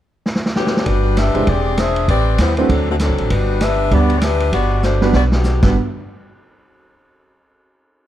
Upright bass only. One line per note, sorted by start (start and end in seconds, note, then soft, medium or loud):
0.86 1.32 G1 medium
1.35 1.46 F1 medium
1.47 2.05 E1 medium
2.08 2.37 A1 medium
2.38 2.67 D#2 medium
2.69 3.07 D2 medium
3.09 3.19 C2 medium
3.20 3.29 A1 medium
3.30 3.88 G1 medium
3.91 4.50 D2 medium
4.52 5.11 G1 medium
5.14 5.60 B1 medium
5.63 5.74 G1 medium